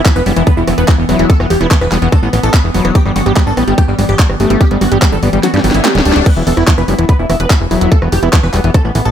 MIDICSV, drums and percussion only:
0, 0, Header, 1, 2, 480
1, 0, Start_track
1, 0, Key_signature, 1, "minor"
1, 0, Tempo, 413793
1, 1503, Time_signature, 4, 2, 24, 8
1, 10570, End_track
2, 0, Start_track
2, 0, Title_t, "Drums"
2, 63, Note_on_c, 9, 36, 122
2, 64, Note_on_c, 9, 39, 116
2, 64, Note_on_c, 9, 42, 77
2, 179, Note_off_c, 9, 36, 0
2, 180, Note_off_c, 9, 39, 0
2, 180, Note_off_c, 9, 42, 0
2, 184, Note_on_c, 9, 37, 43
2, 300, Note_off_c, 9, 37, 0
2, 303, Note_on_c, 9, 46, 97
2, 419, Note_off_c, 9, 46, 0
2, 423, Note_on_c, 9, 37, 42
2, 423, Note_on_c, 9, 42, 51
2, 539, Note_off_c, 9, 37, 0
2, 539, Note_off_c, 9, 42, 0
2, 543, Note_on_c, 9, 36, 117
2, 543, Note_on_c, 9, 42, 78
2, 659, Note_off_c, 9, 36, 0
2, 659, Note_off_c, 9, 42, 0
2, 783, Note_on_c, 9, 37, 83
2, 783, Note_on_c, 9, 46, 105
2, 899, Note_off_c, 9, 37, 0
2, 899, Note_off_c, 9, 46, 0
2, 903, Note_on_c, 9, 42, 51
2, 1019, Note_off_c, 9, 42, 0
2, 1023, Note_on_c, 9, 36, 123
2, 1023, Note_on_c, 9, 37, 41
2, 1023, Note_on_c, 9, 39, 117
2, 1023, Note_on_c, 9, 42, 78
2, 1139, Note_off_c, 9, 36, 0
2, 1139, Note_off_c, 9, 37, 0
2, 1139, Note_off_c, 9, 39, 0
2, 1139, Note_off_c, 9, 42, 0
2, 1263, Note_on_c, 9, 37, 41
2, 1263, Note_on_c, 9, 46, 93
2, 1379, Note_off_c, 9, 37, 0
2, 1379, Note_off_c, 9, 46, 0
2, 1384, Note_on_c, 9, 42, 51
2, 1500, Note_off_c, 9, 42, 0
2, 1503, Note_on_c, 9, 36, 122
2, 1504, Note_on_c, 9, 42, 82
2, 1619, Note_off_c, 9, 36, 0
2, 1620, Note_off_c, 9, 42, 0
2, 1624, Note_on_c, 9, 37, 82
2, 1740, Note_off_c, 9, 37, 0
2, 1744, Note_on_c, 9, 46, 106
2, 1860, Note_off_c, 9, 46, 0
2, 1864, Note_on_c, 9, 37, 42
2, 1864, Note_on_c, 9, 42, 53
2, 1980, Note_off_c, 9, 37, 0
2, 1980, Note_off_c, 9, 42, 0
2, 1983, Note_on_c, 9, 36, 115
2, 1984, Note_on_c, 9, 39, 115
2, 1984, Note_on_c, 9, 42, 81
2, 2099, Note_off_c, 9, 36, 0
2, 2100, Note_off_c, 9, 39, 0
2, 2100, Note_off_c, 9, 42, 0
2, 2104, Note_on_c, 9, 37, 44
2, 2220, Note_off_c, 9, 37, 0
2, 2224, Note_on_c, 9, 39, 59
2, 2224, Note_on_c, 9, 46, 95
2, 2340, Note_off_c, 9, 39, 0
2, 2340, Note_off_c, 9, 46, 0
2, 2344, Note_on_c, 9, 42, 52
2, 2460, Note_off_c, 9, 42, 0
2, 2463, Note_on_c, 9, 36, 116
2, 2464, Note_on_c, 9, 37, 86
2, 2464, Note_on_c, 9, 42, 79
2, 2579, Note_off_c, 9, 36, 0
2, 2580, Note_off_c, 9, 37, 0
2, 2580, Note_off_c, 9, 42, 0
2, 2704, Note_on_c, 9, 37, 43
2, 2704, Note_on_c, 9, 46, 105
2, 2820, Note_off_c, 9, 37, 0
2, 2820, Note_off_c, 9, 46, 0
2, 2824, Note_on_c, 9, 42, 54
2, 2940, Note_off_c, 9, 42, 0
2, 2943, Note_on_c, 9, 36, 119
2, 2944, Note_on_c, 9, 37, 43
2, 2944, Note_on_c, 9, 39, 115
2, 2944, Note_on_c, 9, 42, 80
2, 3059, Note_off_c, 9, 36, 0
2, 3060, Note_off_c, 9, 37, 0
2, 3060, Note_off_c, 9, 39, 0
2, 3060, Note_off_c, 9, 42, 0
2, 3184, Note_on_c, 9, 46, 91
2, 3300, Note_off_c, 9, 46, 0
2, 3304, Note_on_c, 9, 37, 82
2, 3304, Note_on_c, 9, 42, 54
2, 3420, Note_off_c, 9, 37, 0
2, 3420, Note_off_c, 9, 42, 0
2, 3423, Note_on_c, 9, 36, 117
2, 3424, Note_on_c, 9, 42, 83
2, 3539, Note_off_c, 9, 36, 0
2, 3540, Note_off_c, 9, 42, 0
2, 3544, Note_on_c, 9, 37, 40
2, 3660, Note_off_c, 9, 37, 0
2, 3663, Note_on_c, 9, 46, 101
2, 3779, Note_off_c, 9, 46, 0
2, 3783, Note_on_c, 9, 37, 42
2, 3783, Note_on_c, 9, 42, 55
2, 3899, Note_off_c, 9, 37, 0
2, 3899, Note_off_c, 9, 42, 0
2, 3903, Note_on_c, 9, 36, 115
2, 3903, Note_on_c, 9, 39, 114
2, 3903, Note_on_c, 9, 42, 85
2, 4019, Note_off_c, 9, 36, 0
2, 4019, Note_off_c, 9, 39, 0
2, 4019, Note_off_c, 9, 42, 0
2, 4143, Note_on_c, 9, 37, 83
2, 4143, Note_on_c, 9, 46, 90
2, 4259, Note_off_c, 9, 37, 0
2, 4259, Note_off_c, 9, 46, 0
2, 4264, Note_on_c, 9, 42, 55
2, 4380, Note_off_c, 9, 42, 0
2, 4383, Note_on_c, 9, 36, 114
2, 4384, Note_on_c, 9, 37, 40
2, 4384, Note_on_c, 9, 42, 82
2, 4499, Note_off_c, 9, 36, 0
2, 4500, Note_off_c, 9, 37, 0
2, 4500, Note_off_c, 9, 42, 0
2, 4624, Note_on_c, 9, 37, 41
2, 4624, Note_on_c, 9, 46, 103
2, 4740, Note_off_c, 9, 37, 0
2, 4740, Note_off_c, 9, 46, 0
2, 4743, Note_on_c, 9, 42, 55
2, 4859, Note_off_c, 9, 42, 0
2, 4863, Note_on_c, 9, 36, 117
2, 4863, Note_on_c, 9, 39, 119
2, 4863, Note_on_c, 9, 42, 81
2, 4979, Note_off_c, 9, 36, 0
2, 4979, Note_off_c, 9, 39, 0
2, 4979, Note_off_c, 9, 42, 0
2, 4983, Note_on_c, 9, 37, 83
2, 5099, Note_off_c, 9, 37, 0
2, 5103, Note_on_c, 9, 46, 91
2, 5219, Note_off_c, 9, 46, 0
2, 5223, Note_on_c, 9, 37, 40
2, 5223, Note_on_c, 9, 42, 55
2, 5339, Note_off_c, 9, 37, 0
2, 5339, Note_off_c, 9, 42, 0
2, 5343, Note_on_c, 9, 36, 119
2, 5343, Note_on_c, 9, 42, 84
2, 5459, Note_off_c, 9, 36, 0
2, 5459, Note_off_c, 9, 42, 0
2, 5463, Note_on_c, 9, 37, 40
2, 5463, Note_on_c, 9, 42, 39
2, 5579, Note_off_c, 9, 37, 0
2, 5579, Note_off_c, 9, 42, 0
2, 5583, Note_on_c, 9, 46, 104
2, 5699, Note_off_c, 9, 46, 0
2, 5703, Note_on_c, 9, 42, 57
2, 5819, Note_off_c, 9, 42, 0
2, 5823, Note_on_c, 9, 36, 114
2, 5823, Note_on_c, 9, 37, 79
2, 5823, Note_on_c, 9, 39, 123
2, 5823, Note_on_c, 9, 42, 85
2, 5939, Note_off_c, 9, 36, 0
2, 5939, Note_off_c, 9, 37, 0
2, 5939, Note_off_c, 9, 39, 0
2, 5939, Note_off_c, 9, 42, 0
2, 6063, Note_on_c, 9, 46, 92
2, 6179, Note_off_c, 9, 46, 0
2, 6183, Note_on_c, 9, 42, 55
2, 6299, Note_off_c, 9, 42, 0
2, 6302, Note_on_c, 9, 38, 67
2, 6302, Note_on_c, 9, 42, 82
2, 6418, Note_off_c, 9, 38, 0
2, 6418, Note_off_c, 9, 42, 0
2, 6423, Note_on_c, 9, 42, 42
2, 6463, Note_on_c, 9, 38, 78
2, 6539, Note_off_c, 9, 42, 0
2, 6543, Note_on_c, 9, 46, 101
2, 6579, Note_off_c, 9, 38, 0
2, 6623, Note_on_c, 9, 38, 85
2, 6659, Note_off_c, 9, 46, 0
2, 6663, Note_on_c, 9, 42, 57
2, 6739, Note_off_c, 9, 38, 0
2, 6779, Note_off_c, 9, 42, 0
2, 6783, Note_on_c, 9, 38, 92
2, 6783, Note_on_c, 9, 39, 125
2, 6783, Note_on_c, 9, 42, 84
2, 6899, Note_off_c, 9, 38, 0
2, 6899, Note_off_c, 9, 39, 0
2, 6899, Note_off_c, 9, 42, 0
2, 6903, Note_on_c, 9, 42, 39
2, 6943, Note_on_c, 9, 38, 97
2, 7019, Note_off_c, 9, 42, 0
2, 7023, Note_on_c, 9, 46, 94
2, 7059, Note_off_c, 9, 38, 0
2, 7103, Note_on_c, 9, 38, 106
2, 7139, Note_off_c, 9, 46, 0
2, 7143, Note_on_c, 9, 42, 58
2, 7219, Note_off_c, 9, 38, 0
2, 7259, Note_off_c, 9, 42, 0
2, 7263, Note_on_c, 9, 36, 124
2, 7263, Note_on_c, 9, 37, 39
2, 7263, Note_on_c, 9, 42, 86
2, 7263, Note_on_c, 9, 49, 76
2, 7379, Note_off_c, 9, 36, 0
2, 7379, Note_off_c, 9, 37, 0
2, 7379, Note_off_c, 9, 42, 0
2, 7379, Note_off_c, 9, 49, 0
2, 7503, Note_on_c, 9, 46, 107
2, 7619, Note_off_c, 9, 46, 0
2, 7623, Note_on_c, 9, 37, 76
2, 7623, Note_on_c, 9, 42, 57
2, 7739, Note_off_c, 9, 37, 0
2, 7739, Note_off_c, 9, 42, 0
2, 7743, Note_on_c, 9, 36, 119
2, 7743, Note_on_c, 9, 39, 127
2, 7743, Note_on_c, 9, 42, 85
2, 7859, Note_off_c, 9, 36, 0
2, 7859, Note_off_c, 9, 39, 0
2, 7859, Note_off_c, 9, 42, 0
2, 7863, Note_on_c, 9, 37, 38
2, 7979, Note_off_c, 9, 37, 0
2, 7983, Note_on_c, 9, 46, 96
2, 8099, Note_off_c, 9, 46, 0
2, 8103, Note_on_c, 9, 37, 39
2, 8103, Note_on_c, 9, 42, 57
2, 8219, Note_off_c, 9, 37, 0
2, 8219, Note_off_c, 9, 42, 0
2, 8223, Note_on_c, 9, 36, 121
2, 8223, Note_on_c, 9, 42, 85
2, 8339, Note_off_c, 9, 36, 0
2, 8339, Note_off_c, 9, 42, 0
2, 8463, Note_on_c, 9, 37, 77
2, 8463, Note_on_c, 9, 46, 106
2, 8579, Note_off_c, 9, 37, 0
2, 8579, Note_off_c, 9, 46, 0
2, 8583, Note_on_c, 9, 42, 56
2, 8699, Note_off_c, 9, 42, 0
2, 8703, Note_on_c, 9, 36, 123
2, 8703, Note_on_c, 9, 37, 37
2, 8703, Note_on_c, 9, 39, 125
2, 8703, Note_on_c, 9, 42, 86
2, 8819, Note_off_c, 9, 36, 0
2, 8819, Note_off_c, 9, 37, 0
2, 8819, Note_off_c, 9, 39, 0
2, 8819, Note_off_c, 9, 42, 0
2, 8943, Note_on_c, 9, 37, 39
2, 8943, Note_on_c, 9, 46, 92
2, 9059, Note_off_c, 9, 37, 0
2, 9059, Note_off_c, 9, 46, 0
2, 9063, Note_on_c, 9, 42, 57
2, 9179, Note_off_c, 9, 42, 0
2, 9183, Note_on_c, 9, 36, 126
2, 9183, Note_on_c, 9, 42, 82
2, 9299, Note_off_c, 9, 36, 0
2, 9299, Note_off_c, 9, 42, 0
2, 9303, Note_on_c, 9, 37, 78
2, 9419, Note_off_c, 9, 37, 0
2, 9423, Note_on_c, 9, 46, 113
2, 9539, Note_off_c, 9, 46, 0
2, 9543, Note_on_c, 9, 37, 38
2, 9543, Note_on_c, 9, 42, 54
2, 9659, Note_off_c, 9, 37, 0
2, 9659, Note_off_c, 9, 42, 0
2, 9662, Note_on_c, 9, 39, 125
2, 9662, Note_on_c, 9, 42, 81
2, 9663, Note_on_c, 9, 36, 125
2, 9778, Note_off_c, 9, 39, 0
2, 9778, Note_off_c, 9, 42, 0
2, 9779, Note_off_c, 9, 36, 0
2, 9783, Note_on_c, 9, 37, 39
2, 9899, Note_off_c, 9, 37, 0
2, 9903, Note_on_c, 9, 39, 65
2, 9903, Note_on_c, 9, 46, 98
2, 10019, Note_off_c, 9, 39, 0
2, 10019, Note_off_c, 9, 46, 0
2, 10023, Note_on_c, 9, 42, 54
2, 10139, Note_off_c, 9, 42, 0
2, 10143, Note_on_c, 9, 36, 127
2, 10143, Note_on_c, 9, 37, 79
2, 10143, Note_on_c, 9, 42, 81
2, 10259, Note_off_c, 9, 36, 0
2, 10259, Note_off_c, 9, 37, 0
2, 10259, Note_off_c, 9, 42, 0
2, 10383, Note_on_c, 9, 37, 39
2, 10383, Note_on_c, 9, 46, 112
2, 10499, Note_off_c, 9, 37, 0
2, 10499, Note_off_c, 9, 46, 0
2, 10503, Note_on_c, 9, 42, 55
2, 10570, Note_off_c, 9, 42, 0
2, 10570, End_track
0, 0, End_of_file